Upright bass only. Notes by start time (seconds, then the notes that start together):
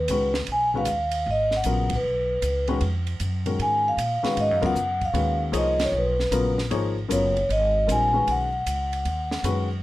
0.09 C#2
0.48 B1
0.87 D#2
1.26 G#1
1.64 A#1
2.03 B1
2.42 C#2
2.81 F2
3.20 F#2
3.59 G#2
3.97 A#2
4.23 muted upright bass stroke
4.37 G#2
4.51 F#2
4.63 D#2
4.75 F#2
5.14 D#2
5.53 C2
5.92 B1
6.31 A#1
6.71 G#1
7.10 F#1
7.49 G#1
7.88 A#1
8.28 B1
8.66 C#2
9.05 D#2
9.43 F#2